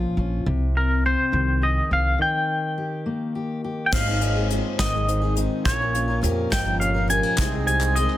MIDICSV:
0, 0, Header, 1, 8, 480
1, 0, Start_track
1, 0, Key_signature, -4, "major"
1, 0, Tempo, 576369
1, 384, Time_signature, 6, 3, 24, 8
1, 6807, End_track
2, 0, Start_track
2, 0, Title_t, "Clean electric guitar"
2, 0, Program_c, 0, 27
2, 0, Note_on_c, 0, 82, 86
2, 112, Note_off_c, 0, 82, 0
2, 641, Note_on_c, 0, 70, 63
2, 879, Note_off_c, 0, 70, 0
2, 882, Note_on_c, 0, 72, 74
2, 1360, Note_on_c, 0, 75, 68
2, 1369, Note_off_c, 0, 72, 0
2, 1600, Note_off_c, 0, 75, 0
2, 1607, Note_on_c, 0, 77, 87
2, 1821, Note_off_c, 0, 77, 0
2, 1847, Note_on_c, 0, 79, 77
2, 2765, Note_off_c, 0, 79, 0
2, 3217, Note_on_c, 0, 79, 68
2, 3271, Note_off_c, 0, 79, 0
2, 3279, Note_on_c, 0, 77, 85
2, 3720, Note_off_c, 0, 77, 0
2, 3993, Note_on_c, 0, 75, 96
2, 4437, Note_off_c, 0, 75, 0
2, 4709, Note_on_c, 0, 73, 97
2, 5155, Note_off_c, 0, 73, 0
2, 5429, Note_on_c, 0, 79, 76
2, 5659, Note_off_c, 0, 79, 0
2, 5662, Note_on_c, 0, 77, 73
2, 5909, Note_off_c, 0, 77, 0
2, 5913, Note_on_c, 0, 80, 94
2, 6378, Note_off_c, 0, 80, 0
2, 6388, Note_on_c, 0, 80, 88
2, 6625, Note_on_c, 0, 75, 86
2, 6634, Note_off_c, 0, 80, 0
2, 6807, Note_off_c, 0, 75, 0
2, 6807, End_track
3, 0, Start_track
3, 0, Title_t, "Harmonium"
3, 0, Program_c, 1, 20
3, 6145, Note_on_c, 1, 68, 91
3, 6149, Note_on_c, 1, 60, 75
3, 6149, Note_on_c, 1, 63, 69
3, 6807, Note_off_c, 1, 60, 0
3, 6807, Note_off_c, 1, 63, 0
3, 6807, Note_off_c, 1, 68, 0
3, 6807, End_track
4, 0, Start_track
4, 0, Title_t, "Steel-string acoustic guitar"
4, 0, Program_c, 2, 25
4, 3260, Note_on_c, 2, 44, 66
4, 3265, Note_on_c, 2, 51, 73
4, 3270, Note_on_c, 2, 56, 74
4, 3275, Note_on_c, 2, 60, 81
4, 3279, Note_on_c, 2, 63, 75
4, 3283, Note_on_c, 2, 68, 76
4, 3379, Note_off_c, 2, 68, 0
4, 3384, Note_off_c, 2, 44, 0
4, 3386, Note_off_c, 2, 51, 0
4, 3389, Note_off_c, 2, 56, 0
4, 3389, Note_off_c, 2, 63, 0
4, 3389, Note_on_c, 2, 68, 43
4, 3392, Note_off_c, 2, 60, 0
4, 3399, Note_on_c, 2, 63, 46
4, 3407, Note_on_c, 2, 60, 38
4, 3418, Note_on_c, 2, 56, 36
4, 3623, Note_off_c, 2, 68, 0
4, 3633, Note_on_c, 2, 68, 45
4, 3634, Note_off_c, 2, 63, 0
4, 3638, Note_off_c, 2, 60, 0
4, 3643, Note_off_c, 2, 56, 0
4, 3643, Note_on_c, 2, 63, 39
4, 3651, Note_on_c, 2, 60, 41
4, 3662, Note_on_c, 2, 56, 36
4, 3745, Note_off_c, 2, 56, 0
4, 3750, Note_off_c, 2, 68, 0
4, 3755, Note_on_c, 2, 56, 55
4, 3756, Note_off_c, 2, 63, 0
4, 3759, Note_off_c, 2, 60, 0
4, 3768, Note_on_c, 2, 60, 67
4, 3774, Note_on_c, 2, 63, 55
4, 3780, Note_on_c, 2, 68, 61
4, 3991, Note_off_c, 2, 56, 0
4, 3994, Note_on_c, 2, 44, 66
4, 3998, Note_off_c, 2, 60, 0
4, 4001, Note_off_c, 2, 63, 0
4, 4001, Note_off_c, 2, 68, 0
4, 4002, Note_on_c, 2, 51, 80
4, 4002, Note_on_c, 2, 56, 72
4, 4008, Note_on_c, 2, 60, 76
4, 4011, Note_on_c, 2, 63, 69
4, 4011, Note_on_c, 2, 68, 72
4, 4102, Note_off_c, 2, 68, 0
4, 4111, Note_off_c, 2, 44, 0
4, 4111, Note_off_c, 2, 63, 0
4, 4112, Note_on_c, 2, 68, 56
4, 4115, Note_off_c, 2, 51, 0
4, 4115, Note_off_c, 2, 56, 0
4, 4118, Note_off_c, 2, 60, 0
4, 4121, Note_on_c, 2, 63, 46
4, 4131, Note_on_c, 2, 60, 43
4, 4140, Note_on_c, 2, 56, 43
4, 4334, Note_off_c, 2, 68, 0
4, 4344, Note_on_c, 2, 68, 56
4, 4347, Note_off_c, 2, 63, 0
4, 4351, Note_off_c, 2, 60, 0
4, 4357, Note_on_c, 2, 63, 46
4, 4361, Note_on_c, 2, 60, 42
4, 4362, Note_off_c, 2, 56, 0
4, 4372, Note_on_c, 2, 56, 43
4, 4451, Note_off_c, 2, 56, 0
4, 4461, Note_on_c, 2, 56, 53
4, 4463, Note_off_c, 2, 60, 0
4, 4466, Note_off_c, 2, 68, 0
4, 4472, Note_off_c, 2, 63, 0
4, 4473, Note_on_c, 2, 60, 59
4, 4485, Note_on_c, 2, 63, 64
4, 4496, Note_on_c, 2, 68, 63
4, 4704, Note_off_c, 2, 56, 0
4, 4704, Note_on_c, 2, 46, 73
4, 4710, Note_off_c, 2, 60, 0
4, 4714, Note_on_c, 2, 53, 73
4, 4715, Note_on_c, 2, 61, 81
4, 4716, Note_off_c, 2, 63, 0
4, 4721, Note_on_c, 2, 65, 83
4, 4722, Note_off_c, 2, 68, 0
4, 4725, Note_on_c, 2, 70, 77
4, 4808, Note_off_c, 2, 70, 0
4, 4818, Note_on_c, 2, 70, 49
4, 4825, Note_off_c, 2, 65, 0
4, 4826, Note_off_c, 2, 46, 0
4, 4831, Note_off_c, 2, 53, 0
4, 4831, Note_off_c, 2, 61, 0
4, 4835, Note_on_c, 2, 65, 46
4, 4847, Note_on_c, 2, 61, 44
4, 5051, Note_off_c, 2, 70, 0
4, 5061, Note_on_c, 2, 70, 51
4, 5071, Note_off_c, 2, 65, 0
4, 5077, Note_off_c, 2, 61, 0
4, 5079, Note_on_c, 2, 65, 46
4, 5091, Note_on_c, 2, 61, 39
4, 5176, Note_on_c, 2, 53, 57
4, 5177, Note_off_c, 2, 61, 0
4, 5184, Note_off_c, 2, 70, 0
4, 5187, Note_on_c, 2, 61, 67
4, 5188, Note_off_c, 2, 65, 0
4, 5198, Note_on_c, 2, 65, 64
4, 5207, Note_on_c, 2, 70, 61
4, 5415, Note_on_c, 2, 46, 70
4, 5416, Note_off_c, 2, 53, 0
4, 5419, Note_off_c, 2, 61, 0
4, 5428, Note_off_c, 2, 65, 0
4, 5429, Note_off_c, 2, 70, 0
4, 5541, Note_off_c, 2, 46, 0
4, 5542, Note_on_c, 2, 70, 51
4, 5559, Note_on_c, 2, 65, 47
4, 5572, Note_on_c, 2, 61, 42
4, 5772, Note_off_c, 2, 70, 0
4, 5782, Note_on_c, 2, 70, 52
4, 5789, Note_off_c, 2, 65, 0
4, 5799, Note_off_c, 2, 61, 0
4, 5799, Note_on_c, 2, 65, 53
4, 5811, Note_on_c, 2, 61, 47
4, 5894, Note_on_c, 2, 53, 62
4, 5899, Note_off_c, 2, 61, 0
4, 5904, Note_off_c, 2, 70, 0
4, 5909, Note_off_c, 2, 65, 0
4, 5909, Note_on_c, 2, 61, 62
4, 5919, Note_on_c, 2, 65, 66
4, 5926, Note_on_c, 2, 70, 62
4, 6140, Note_off_c, 2, 53, 0
4, 6147, Note_on_c, 2, 48, 80
4, 6148, Note_off_c, 2, 61, 0
4, 6153, Note_off_c, 2, 65, 0
4, 6153, Note_on_c, 2, 51, 75
4, 6156, Note_off_c, 2, 70, 0
4, 6158, Note_on_c, 2, 56, 80
4, 6166, Note_on_c, 2, 68, 88
4, 6167, Note_on_c, 2, 60, 87
4, 6251, Note_off_c, 2, 68, 0
4, 6261, Note_on_c, 2, 68, 44
4, 6267, Note_off_c, 2, 48, 0
4, 6268, Note_off_c, 2, 60, 0
4, 6270, Note_off_c, 2, 51, 0
4, 6272, Note_off_c, 2, 56, 0
4, 6278, Note_on_c, 2, 60, 46
4, 6291, Note_on_c, 2, 56, 40
4, 6495, Note_off_c, 2, 68, 0
4, 6505, Note_on_c, 2, 68, 50
4, 6506, Note_off_c, 2, 60, 0
4, 6516, Note_on_c, 2, 60, 42
4, 6518, Note_off_c, 2, 56, 0
4, 6531, Note_on_c, 2, 56, 38
4, 6624, Note_off_c, 2, 56, 0
4, 6625, Note_off_c, 2, 68, 0
4, 6626, Note_on_c, 2, 51, 63
4, 6631, Note_off_c, 2, 60, 0
4, 6634, Note_on_c, 2, 56, 64
4, 6643, Note_on_c, 2, 60, 62
4, 6650, Note_on_c, 2, 68, 70
4, 6807, Note_off_c, 2, 51, 0
4, 6807, Note_off_c, 2, 56, 0
4, 6807, Note_off_c, 2, 60, 0
4, 6807, Note_off_c, 2, 68, 0
4, 6807, End_track
5, 0, Start_track
5, 0, Title_t, "Upright piano"
5, 0, Program_c, 3, 0
5, 3268, Note_on_c, 3, 56, 68
5, 3268, Note_on_c, 3, 60, 56
5, 3269, Note_on_c, 3, 44, 58
5, 3269, Note_on_c, 3, 63, 65
5, 3270, Note_on_c, 3, 32, 54
5, 3273, Note_on_c, 3, 72, 80
5, 3433, Note_off_c, 3, 56, 0
5, 3433, Note_off_c, 3, 60, 0
5, 3434, Note_off_c, 3, 63, 0
5, 3435, Note_off_c, 3, 72, 0
5, 3451, Control_c, 3, 64, 127
5, 3511, Note_on_c, 3, 56, 63
5, 3511, Note_on_c, 3, 60, 58
5, 3516, Note_on_c, 3, 75, 72
5, 3518, Note_on_c, 3, 63, 58
5, 3674, Note_off_c, 3, 56, 0
5, 3674, Note_off_c, 3, 60, 0
5, 3677, Note_off_c, 3, 75, 0
5, 3678, Note_off_c, 3, 63, 0
5, 3755, Note_on_c, 3, 56, 63
5, 3756, Note_on_c, 3, 60, 53
5, 3760, Note_on_c, 3, 63, 52
5, 3762, Note_on_c, 3, 65, 66
5, 3916, Note_off_c, 3, 56, 0
5, 3917, Note_off_c, 3, 60, 0
5, 3919, Note_off_c, 3, 63, 0
5, 3920, Note_off_c, 3, 65, 0
5, 3995, Note_on_c, 3, 60, 53
5, 3996, Note_on_c, 3, 56, 61
5, 3996, Note_on_c, 3, 63, 52
5, 3999, Note_on_c, 3, 72, 66
5, 4156, Note_off_c, 3, 60, 0
5, 4157, Note_off_c, 3, 56, 0
5, 4157, Note_off_c, 3, 63, 0
5, 4158, Note_off_c, 3, 72, 0
5, 4232, Note_on_c, 3, 56, 62
5, 4232, Note_on_c, 3, 60, 58
5, 4235, Note_on_c, 3, 63, 57
5, 4238, Note_on_c, 3, 72, 62
5, 4395, Note_off_c, 3, 56, 0
5, 4395, Note_off_c, 3, 60, 0
5, 4397, Note_off_c, 3, 63, 0
5, 4398, Note_off_c, 3, 72, 0
5, 4470, Note_on_c, 3, 56, 60
5, 4475, Note_on_c, 3, 60, 60
5, 4475, Note_on_c, 3, 72, 68
5, 4477, Note_on_c, 3, 63, 55
5, 4634, Note_off_c, 3, 56, 0
5, 4636, Note_off_c, 3, 60, 0
5, 4636, Note_off_c, 3, 72, 0
5, 4637, Note_off_c, 3, 63, 0
5, 4675, Note_off_c, 3, 44, 0
5, 4676, Note_off_c, 3, 32, 0
5, 4704, Note_on_c, 3, 58, 70
5, 4707, Note_on_c, 3, 46, 56
5, 4708, Note_on_c, 3, 65, 68
5, 4709, Note_on_c, 3, 34, 56
5, 4710, Note_on_c, 3, 61, 66
5, 4711, Note_on_c, 3, 73, 75
5, 4717, Control_c, 3, 64, 0
5, 4867, Control_c, 3, 64, 127
5, 4871, Note_off_c, 3, 58, 0
5, 4873, Note_off_c, 3, 65, 0
5, 4874, Note_off_c, 3, 61, 0
5, 4874, Note_off_c, 3, 73, 0
5, 4941, Note_on_c, 3, 58, 65
5, 4945, Note_on_c, 3, 61, 59
5, 4948, Note_on_c, 3, 73, 71
5, 4950, Note_on_c, 3, 65, 60
5, 5109, Note_off_c, 3, 58, 0
5, 5111, Note_off_c, 3, 61, 0
5, 5112, Note_off_c, 3, 73, 0
5, 5114, Note_off_c, 3, 65, 0
5, 5184, Note_on_c, 3, 58, 65
5, 5188, Note_on_c, 3, 61, 59
5, 5189, Note_on_c, 3, 65, 59
5, 5190, Note_on_c, 3, 67, 65
5, 5351, Note_off_c, 3, 58, 0
5, 5352, Note_off_c, 3, 61, 0
5, 5353, Note_off_c, 3, 65, 0
5, 5353, Note_off_c, 3, 67, 0
5, 5426, Note_on_c, 3, 61, 61
5, 5427, Note_on_c, 3, 58, 62
5, 5428, Note_on_c, 3, 65, 62
5, 5433, Note_on_c, 3, 75, 68
5, 5592, Note_off_c, 3, 58, 0
5, 5592, Note_off_c, 3, 61, 0
5, 5593, Note_off_c, 3, 65, 0
5, 5595, Note_off_c, 3, 75, 0
5, 5660, Note_on_c, 3, 58, 65
5, 5664, Note_on_c, 3, 65, 57
5, 5665, Note_on_c, 3, 61, 57
5, 5668, Note_on_c, 3, 73, 67
5, 5828, Note_off_c, 3, 58, 0
5, 5831, Note_off_c, 3, 61, 0
5, 5831, Note_off_c, 3, 65, 0
5, 5832, Note_off_c, 3, 73, 0
5, 5900, Note_on_c, 3, 58, 67
5, 5902, Note_on_c, 3, 61, 62
5, 5904, Note_on_c, 3, 65, 55
5, 5906, Note_on_c, 3, 67, 66
5, 6068, Note_off_c, 3, 58, 0
5, 6069, Note_off_c, 3, 61, 0
5, 6070, Note_off_c, 3, 65, 0
5, 6071, Note_off_c, 3, 67, 0
5, 6113, Note_off_c, 3, 46, 0
5, 6114, Note_off_c, 3, 34, 0
5, 6140, Note_on_c, 3, 48, 59
5, 6140, Note_on_c, 3, 56, 73
5, 6141, Note_on_c, 3, 36, 57
5, 6143, Note_on_c, 3, 60, 68
5, 6144, Note_on_c, 3, 63, 65
5, 6148, Note_on_c, 3, 72, 83
5, 6159, Control_c, 3, 64, 0
5, 6282, Control_c, 3, 64, 127
5, 6308, Note_off_c, 3, 56, 0
5, 6309, Note_off_c, 3, 60, 0
5, 6310, Note_off_c, 3, 63, 0
5, 6312, Note_off_c, 3, 72, 0
5, 6376, Note_on_c, 3, 56, 73
5, 6376, Note_on_c, 3, 60, 61
5, 6378, Note_on_c, 3, 63, 63
5, 6379, Note_on_c, 3, 67, 75
5, 6546, Note_off_c, 3, 56, 0
5, 6546, Note_off_c, 3, 60, 0
5, 6547, Note_off_c, 3, 63, 0
5, 6548, Note_off_c, 3, 67, 0
5, 6619, Note_on_c, 3, 56, 58
5, 6624, Note_on_c, 3, 60, 54
5, 6626, Note_on_c, 3, 63, 52
5, 6627, Note_on_c, 3, 68, 64
5, 6787, Note_off_c, 3, 56, 0
5, 6789, Note_off_c, 3, 60, 0
5, 6791, Note_off_c, 3, 63, 0
5, 6791, Note_off_c, 3, 68, 0
5, 6807, Note_off_c, 3, 36, 0
5, 6807, Note_off_c, 3, 48, 0
5, 6807, End_track
6, 0, Start_track
6, 0, Title_t, "Steel-string acoustic guitar"
6, 0, Program_c, 4, 25
6, 0, Note_on_c, 4, 46, 62
6, 0, Note_on_c, 4, 53, 63
6, 0, Note_on_c, 4, 61, 51
6, 0, Note_on_c, 4, 65, 59
6, 145, Note_off_c, 4, 61, 0
6, 155, Note_on_c, 4, 61, 56
6, 359, Note_off_c, 4, 53, 0
6, 361, Note_off_c, 4, 61, 0
6, 382, Note_off_c, 4, 46, 0
6, 385, Note_on_c, 4, 48, 72
6, 392, Note_off_c, 4, 65, 0
6, 878, Note_on_c, 4, 60, 53
6, 1098, Note_on_c, 4, 51, 60
6, 1106, Note_off_c, 4, 48, 0
6, 1350, Note_on_c, 4, 68, 58
6, 1581, Note_off_c, 4, 60, 0
6, 1591, Note_on_c, 4, 60, 52
6, 1800, Note_off_c, 4, 68, 0
6, 1808, Note_off_c, 4, 51, 0
6, 1818, Note_on_c, 4, 51, 70
6, 1829, Note_off_c, 4, 60, 0
6, 2313, Note_on_c, 4, 67, 52
6, 2547, Note_on_c, 4, 58, 57
6, 2782, Note_off_c, 4, 67, 0
6, 2792, Note_on_c, 4, 67, 53
6, 3025, Note_off_c, 4, 67, 0
6, 3035, Note_on_c, 4, 67, 53
6, 3239, Note_off_c, 4, 58, 0
6, 3242, Note_off_c, 4, 67, 0
6, 3268, Note_on_c, 4, 44, 66
6, 3510, Note_on_c, 4, 68, 60
6, 3756, Note_on_c, 4, 60, 49
6, 3981, Note_off_c, 4, 51, 0
6, 3991, Note_on_c, 4, 51, 57
6, 4236, Note_on_c, 4, 63, 57
6, 4467, Note_off_c, 4, 60, 0
6, 4477, Note_on_c, 4, 60, 56
6, 4679, Note_off_c, 4, 44, 0
6, 4680, Note_off_c, 4, 68, 0
6, 4683, Note_off_c, 4, 63, 0
6, 4684, Note_off_c, 4, 60, 0
6, 4709, Note_off_c, 4, 51, 0
6, 4712, Note_on_c, 4, 46, 74
6, 4957, Note_on_c, 4, 65, 57
6, 5195, Note_on_c, 4, 58, 50
6, 5423, Note_on_c, 4, 53, 69
6, 5671, Note_on_c, 4, 61, 57
6, 5900, Note_off_c, 4, 58, 0
6, 5903, Note_on_c, 4, 56, 63
6, 6023, Note_off_c, 4, 56, 0
6, 6023, Note_on_c, 4, 58, 54
6, 6116, Note_off_c, 4, 53, 0
6, 6120, Note_off_c, 4, 61, 0
6, 6145, Note_off_c, 4, 58, 0
6, 6149, Note_off_c, 4, 46, 0
6, 6151, Note_off_c, 4, 65, 0
6, 6807, End_track
7, 0, Start_track
7, 0, Title_t, "Upright bass"
7, 0, Program_c, 5, 32
7, 141, Note_on_c, 5, 34, 75
7, 328, Note_off_c, 5, 34, 0
7, 386, Note_on_c, 5, 36, 88
7, 944, Note_off_c, 5, 36, 0
7, 1108, Note_on_c, 5, 36, 85
7, 1479, Note_off_c, 5, 36, 0
7, 1591, Note_on_c, 5, 36, 72
7, 1775, Note_off_c, 5, 36, 0
7, 3267, Note_on_c, 5, 32, 88
7, 3825, Note_off_c, 5, 32, 0
7, 3988, Note_on_c, 5, 32, 82
7, 4546, Note_off_c, 5, 32, 0
7, 4709, Note_on_c, 5, 34, 88
7, 5184, Note_on_c, 5, 41, 87
7, 5197, Note_off_c, 5, 34, 0
7, 5371, Note_off_c, 5, 41, 0
7, 5428, Note_on_c, 5, 31, 100
7, 5985, Note_off_c, 5, 31, 0
7, 6149, Note_on_c, 5, 36, 93
7, 6705, Note_off_c, 5, 36, 0
7, 6807, End_track
8, 0, Start_track
8, 0, Title_t, "Drums"
8, 3268, Note_on_c, 9, 49, 83
8, 3270, Note_on_c, 9, 36, 104
8, 3351, Note_off_c, 9, 49, 0
8, 3353, Note_off_c, 9, 36, 0
8, 3508, Note_on_c, 9, 42, 54
8, 3591, Note_off_c, 9, 42, 0
8, 3750, Note_on_c, 9, 42, 51
8, 3833, Note_off_c, 9, 42, 0
8, 3989, Note_on_c, 9, 36, 75
8, 3990, Note_on_c, 9, 38, 98
8, 3990, Note_on_c, 9, 42, 71
8, 4073, Note_off_c, 9, 36, 0
8, 4073, Note_off_c, 9, 38, 0
8, 4073, Note_off_c, 9, 42, 0
8, 4234, Note_on_c, 9, 42, 55
8, 4317, Note_off_c, 9, 42, 0
8, 4468, Note_on_c, 9, 42, 57
8, 4551, Note_off_c, 9, 42, 0
8, 4709, Note_on_c, 9, 36, 95
8, 4709, Note_on_c, 9, 42, 72
8, 4792, Note_off_c, 9, 36, 0
8, 4792, Note_off_c, 9, 42, 0
8, 4952, Note_on_c, 9, 42, 57
8, 5036, Note_off_c, 9, 42, 0
8, 5192, Note_on_c, 9, 42, 58
8, 5275, Note_off_c, 9, 42, 0
8, 5430, Note_on_c, 9, 36, 75
8, 5432, Note_on_c, 9, 38, 105
8, 5432, Note_on_c, 9, 42, 87
8, 5513, Note_off_c, 9, 36, 0
8, 5515, Note_off_c, 9, 38, 0
8, 5515, Note_off_c, 9, 42, 0
8, 5673, Note_on_c, 9, 42, 59
8, 5756, Note_off_c, 9, 42, 0
8, 5911, Note_on_c, 9, 42, 62
8, 5994, Note_off_c, 9, 42, 0
8, 6146, Note_on_c, 9, 39, 82
8, 6147, Note_on_c, 9, 82, 92
8, 6149, Note_on_c, 9, 36, 99
8, 6149, Note_on_c, 9, 42, 73
8, 6229, Note_off_c, 9, 39, 0
8, 6230, Note_off_c, 9, 82, 0
8, 6232, Note_off_c, 9, 36, 0
8, 6233, Note_off_c, 9, 42, 0
8, 6264, Note_on_c, 9, 39, 29
8, 6348, Note_off_c, 9, 39, 0
8, 6389, Note_on_c, 9, 42, 59
8, 6392, Note_on_c, 9, 82, 28
8, 6473, Note_off_c, 9, 42, 0
8, 6475, Note_off_c, 9, 82, 0
8, 6503, Note_on_c, 9, 39, 75
8, 6509, Note_on_c, 9, 82, 73
8, 6586, Note_off_c, 9, 39, 0
8, 6592, Note_off_c, 9, 82, 0
8, 6629, Note_on_c, 9, 42, 57
8, 6713, Note_off_c, 9, 42, 0
8, 6746, Note_on_c, 9, 39, 28
8, 6807, Note_off_c, 9, 39, 0
8, 6807, End_track
0, 0, End_of_file